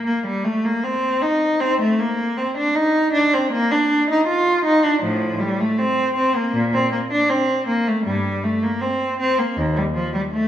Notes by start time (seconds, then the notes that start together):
0.06 A#3
0.26 G3
0.45 A3
0.65 A#3
0.84 C4
1.22 D#4
1.60 C4
1.81 A3
2.00 A#3
2.37 C4
2.58 D4
2.75 D#4
3.13 D4
3.34 C4
3.52 A#3
3.71 D4
4.10 D#4
4.27 F4
4.65 D#4
4.85 D4
5.02 A2 F3
5.40 G3
5.60 A3
5.78 C4
6.16 C4
6.36 A#3
6.53 A#2
6.73 C4
6.92 A#3
7.11 D4
7.29 C4
7.67 A#3
7.88 A3
8.05 G2 G3
8.44 A3
8.63 A#3
8.81 C4
9.19 C4
9.39 A#3
9.57 D#2
9.77 G3
9.94 F3
10.14 G3
10.32 A3